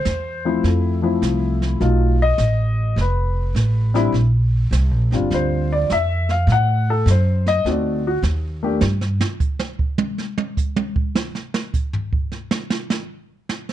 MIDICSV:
0, 0, Header, 1, 4, 480
1, 0, Start_track
1, 0, Key_signature, -1, "minor"
1, 0, Tempo, 584226
1, 1487, Time_signature, 4, 2, 24, 8
1, 11280, End_track
2, 0, Start_track
2, 0, Title_t, "Grand piano"
2, 0, Program_c, 0, 0
2, 0, Note_on_c, 0, 72, 81
2, 370, Note_on_c, 0, 53, 56
2, 372, Note_on_c, 0, 57, 53
2, 372, Note_on_c, 0, 60, 53
2, 378, Note_on_c, 0, 64, 60
2, 503, Note_off_c, 0, 72, 0
2, 555, Note_on_c, 0, 69, 45
2, 817, Note_off_c, 0, 53, 0
2, 818, Note_off_c, 0, 57, 0
2, 818, Note_off_c, 0, 60, 0
2, 822, Note_off_c, 0, 64, 0
2, 838, Note_on_c, 0, 53, 66
2, 842, Note_on_c, 0, 57, 55
2, 850, Note_on_c, 0, 60, 53
2, 850, Note_on_c, 0, 64, 63
2, 1310, Note_off_c, 0, 69, 0
2, 1449, Note_off_c, 0, 53, 0
2, 1452, Note_off_c, 0, 57, 0
2, 1455, Note_off_c, 0, 60, 0
2, 1456, Note_off_c, 0, 64, 0
2, 1480, Note_on_c, 0, 54, 59
2, 1488, Note_on_c, 0, 57, 55
2, 1491, Note_on_c, 0, 63, 57
2, 1493, Note_on_c, 0, 65, 73
2, 1773, Note_off_c, 0, 54, 0
2, 1778, Note_off_c, 0, 57, 0
2, 1779, Note_off_c, 0, 63, 0
2, 1780, Note_off_c, 0, 65, 0
2, 1826, Note_on_c, 0, 75, 108
2, 2422, Note_off_c, 0, 75, 0
2, 2472, Note_on_c, 0, 71, 69
2, 3229, Note_off_c, 0, 71, 0
2, 3237, Note_on_c, 0, 55, 75
2, 3239, Note_on_c, 0, 60, 66
2, 3239, Note_on_c, 0, 62, 66
2, 3250, Note_on_c, 0, 64, 86
2, 3385, Note_off_c, 0, 55, 0
2, 3386, Note_off_c, 0, 60, 0
2, 3386, Note_off_c, 0, 62, 0
2, 3391, Note_off_c, 0, 64, 0
2, 4209, Note_on_c, 0, 55, 59
2, 4213, Note_on_c, 0, 60, 50
2, 4215, Note_on_c, 0, 62, 58
2, 4223, Note_on_c, 0, 65, 68
2, 4391, Note_on_c, 0, 72, 76
2, 4692, Note_off_c, 0, 72, 0
2, 4704, Note_on_c, 0, 74, 89
2, 4815, Note_off_c, 0, 55, 0
2, 4817, Note_off_c, 0, 60, 0
2, 4818, Note_off_c, 0, 62, 0
2, 4822, Note_off_c, 0, 65, 0
2, 4849, Note_off_c, 0, 74, 0
2, 4868, Note_on_c, 0, 76, 90
2, 5170, Note_off_c, 0, 76, 0
2, 5180, Note_on_c, 0, 77, 84
2, 5328, Note_off_c, 0, 77, 0
2, 5358, Note_on_c, 0, 78, 91
2, 5655, Note_off_c, 0, 78, 0
2, 5671, Note_on_c, 0, 69, 80
2, 5813, Note_off_c, 0, 69, 0
2, 5839, Note_on_c, 0, 72, 64
2, 6136, Note_off_c, 0, 72, 0
2, 6144, Note_on_c, 0, 75, 112
2, 6289, Note_on_c, 0, 57, 61
2, 6290, Note_off_c, 0, 75, 0
2, 6294, Note_on_c, 0, 60, 58
2, 6297, Note_on_c, 0, 63, 53
2, 6299, Note_on_c, 0, 66, 60
2, 6322, Note_on_c, 0, 74, 72
2, 6578, Note_off_c, 0, 57, 0
2, 6581, Note_off_c, 0, 60, 0
2, 6582, Note_off_c, 0, 63, 0
2, 6583, Note_off_c, 0, 66, 0
2, 6618, Note_off_c, 0, 74, 0
2, 6632, Note_on_c, 0, 66, 76
2, 6720, Note_off_c, 0, 66, 0
2, 7088, Note_on_c, 0, 57, 64
2, 7095, Note_on_c, 0, 58, 59
2, 7099, Note_on_c, 0, 62, 58
2, 7101, Note_on_c, 0, 67, 72
2, 7230, Note_off_c, 0, 57, 0
2, 7234, Note_off_c, 0, 58, 0
2, 7236, Note_off_c, 0, 62, 0
2, 7237, Note_off_c, 0, 67, 0
2, 11280, End_track
3, 0, Start_track
3, 0, Title_t, "Upright bass"
3, 0, Program_c, 1, 32
3, 44, Note_on_c, 1, 40, 76
3, 511, Note_off_c, 1, 40, 0
3, 521, Note_on_c, 1, 41, 68
3, 989, Note_off_c, 1, 41, 0
3, 1002, Note_on_c, 1, 36, 83
3, 1470, Note_off_c, 1, 36, 0
3, 1483, Note_on_c, 1, 35, 81
3, 1950, Note_off_c, 1, 35, 0
3, 1955, Note_on_c, 1, 33, 86
3, 2426, Note_off_c, 1, 33, 0
3, 2434, Note_on_c, 1, 29, 79
3, 2906, Note_off_c, 1, 29, 0
3, 2913, Note_on_c, 1, 33, 89
3, 3385, Note_off_c, 1, 33, 0
3, 3389, Note_on_c, 1, 34, 84
3, 3863, Note_off_c, 1, 34, 0
3, 3869, Note_on_c, 1, 36, 87
3, 4030, Note_off_c, 1, 36, 0
3, 4030, Note_on_c, 1, 34, 58
3, 4193, Note_off_c, 1, 34, 0
3, 4198, Note_on_c, 1, 31, 72
3, 4351, Note_off_c, 1, 31, 0
3, 4359, Note_on_c, 1, 38, 83
3, 4828, Note_off_c, 1, 38, 0
3, 4845, Note_on_c, 1, 41, 85
3, 5311, Note_off_c, 1, 41, 0
3, 5315, Note_on_c, 1, 45, 94
3, 5786, Note_off_c, 1, 45, 0
3, 5799, Note_on_c, 1, 42, 96
3, 6268, Note_off_c, 1, 42, 0
3, 6280, Note_on_c, 1, 38, 77
3, 6749, Note_off_c, 1, 38, 0
3, 6758, Note_on_c, 1, 39, 92
3, 7228, Note_off_c, 1, 39, 0
3, 7242, Note_on_c, 1, 43, 88
3, 7557, Note_off_c, 1, 43, 0
3, 11280, End_track
4, 0, Start_track
4, 0, Title_t, "Drums"
4, 43, Note_on_c, 9, 38, 55
4, 43, Note_on_c, 9, 44, 50
4, 125, Note_off_c, 9, 38, 0
4, 125, Note_off_c, 9, 44, 0
4, 526, Note_on_c, 9, 25, 38
4, 526, Note_on_c, 9, 38, 45
4, 609, Note_off_c, 9, 38, 0
4, 1007, Note_on_c, 9, 38, 50
4, 1007, Note_on_c, 9, 44, 56
4, 1089, Note_off_c, 9, 38, 0
4, 1089, Note_off_c, 9, 44, 0
4, 1330, Note_on_c, 9, 38, 41
4, 1412, Note_off_c, 9, 38, 0
4, 1485, Note_off_c, 9, 25, 0
4, 1485, Note_on_c, 9, 25, 43
4, 1485, Note_on_c, 9, 38, 40
4, 1567, Note_off_c, 9, 38, 0
4, 1956, Note_on_c, 9, 38, 58
4, 1956, Note_on_c, 9, 44, 57
4, 2038, Note_off_c, 9, 38, 0
4, 2038, Note_off_c, 9, 44, 0
4, 2442, Note_off_c, 9, 25, 0
4, 2442, Note_on_c, 9, 25, 51
4, 2442, Note_on_c, 9, 38, 45
4, 2524, Note_off_c, 9, 38, 0
4, 2923, Note_on_c, 9, 38, 54
4, 2923, Note_on_c, 9, 44, 43
4, 3005, Note_off_c, 9, 38, 0
4, 3005, Note_off_c, 9, 44, 0
4, 3245, Note_on_c, 9, 38, 44
4, 3327, Note_off_c, 9, 38, 0
4, 3400, Note_off_c, 9, 25, 0
4, 3400, Note_on_c, 9, 25, 42
4, 3400, Note_on_c, 9, 38, 42
4, 3482, Note_off_c, 9, 38, 0
4, 3881, Note_on_c, 9, 38, 64
4, 3881, Note_on_c, 9, 44, 65
4, 3964, Note_off_c, 9, 38, 0
4, 3964, Note_off_c, 9, 44, 0
4, 4207, Note_on_c, 9, 38, 37
4, 4289, Note_off_c, 9, 38, 0
4, 4362, Note_off_c, 9, 25, 0
4, 4362, Note_on_c, 9, 25, 55
4, 4362, Note_on_c, 9, 38, 48
4, 4444, Note_off_c, 9, 38, 0
4, 4847, Note_on_c, 9, 38, 55
4, 4847, Note_on_c, 9, 44, 48
4, 4929, Note_off_c, 9, 38, 0
4, 4929, Note_off_c, 9, 44, 0
4, 5168, Note_on_c, 9, 38, 39
4, 5250, Note_off_c, 9, 38, 0
4, 5327, Note_off_c, 9, 25, 0
4, 5327, Note_on_c, 9, 25, 46
4, 5327, Note_on_c, 9, 38, 47
4, 5409, Note_off_c, 9, 38, 0
4, 5810, Note_on_c, 9, 38, 57
4, 5810, Note_on_c, 9, 44, 62
4, 5892, Note_off_c, 9, 38, 0
4, 5892, Note_off_c, 9, 44, 0
4, 6133, Note_on_c, 9, 38, 41
4, 6215, Note_off_c, 9, 38, 0
4, 6292, Note_off_c, 9, 25, 0
4, 6292, Note_on_c, 9, 25, 45
4, 6292, Note_on_c, 9, 38, 45
4, 6374, Note_off_c, 9, 38, 0
4, 6765, Note_on_c, 9, 38, 58
4, 6765, Note_on_c, 9, 44, 55
4, 6847, Note_off_c, 9, 38, 0
4, 6847, Note_off_c, 9, 44, 0
4, 7237, Note_on_c, 9, 38, 97
4, 7319, Note_off_c, 9, 38, 0
4, 7405, Note_on_c, 9, 38, 46
4, 7487, Note_off_c, 9, 38, 0
4, 7564, Note_on_c, 9, 38, 100
4, 7635, Note_off_c, 9, 25, 0
4, 7646, Note_off_c, 9, 38, 0
4, 7725, Note_on_c, 9, 36, 84
4, 7726, Note_on_c, 9, 44, 54
4, 7807, Note_off_c, 9, 36, 0
4, 7808, Note_off_c, 9, 44, 0
4, 7883, Note_on_c, 9, 38, 101
4, 7965, Note_off_c, 9, 38, 0
4, 8045, Note_on_c, 9, 36, 75
4, 8127, Note_off_c, 9, 36, 0
4, 8201, Note_on_c, 9, 48, 110
4, 8283, Note_off_c, 9, 48, 0
4, 8365, Note_on_c, 9, 38, 44
4, 8447, Note_off_c, 9, 38, 0
4, 8525, Note_on_c, 9, 48, 85
4, 8607, Note_off_c, 9, 48, 0
4, 8685, Note_on_c, 9, 36, 71
4, 8685, Note_on_c, 9, 44, 58
4, 8767, Note_off_c, 9, 44, 0
4, 8768, Note_off_c, 9, 36, 0
4, 8843, Note_on_c, 9, 48, 95
4, 8926, Note_off_c, 9, 48, 0
4, 9004, Note_on_c, 9, 36, 89
4, 9086, Note_off_c, 9, 36, 0
4, 9164, Note_on_c, 9, 38, 95
4, 9246, Note_off_c, 9, 38, 0
4, 9325, Note_on_c, 9, 38, 47
4, 9407, Note_off_c, 9, 38, 0
4, 9482, Note_on_c, 9, 38, 103
4, 9564, Note_off_c, 9, 38, 0
4, 9643, Note_on_c, 9, 44, 51
4, 9644, Note_on_c, 9, 36, 77
4, 9725, Note_off_c, 9, 44, 0
4, 9726, Note_off_c, 9, 36, 0
4, 9804, Note_on_c, 9, 43, 98
4, 9887, Note_off_c, 9, 43, 0
4, 9963, Note_on_c, 9, 36, 76
4, 10045, Note_off_c, 9, 36, 0
4, 10119, Note_on_c, 9, 38, 41
4, 10201, Note_off_c, 9, 38, 0
4, 10278, Note_on_c, 9, 38, 95
4, 10360, Note_off_c, 9, 38, 0
4, 10437, Note_on_c, 9, 38, 89
4, 10519, Note_off_c, 9, 38, 0
4, 10600, Note_on_c, 9, 38, 99
4, 10600, Note_on_c, 9, 44, 56
4, 10682, Note_off_c, 9, 38, 0
4, 10682, Note_off_c, 9, 44, 0
4, 11086, Note_on_c, 9, 38, 92
4, 11168, Note_off_c, 9, 38, 0
4, 11247, Note_on_c, 9, 38, 41
4, 11280, Note_off_c, 9, 38, 0
4, 11280, End_track
0, 0, End_of_file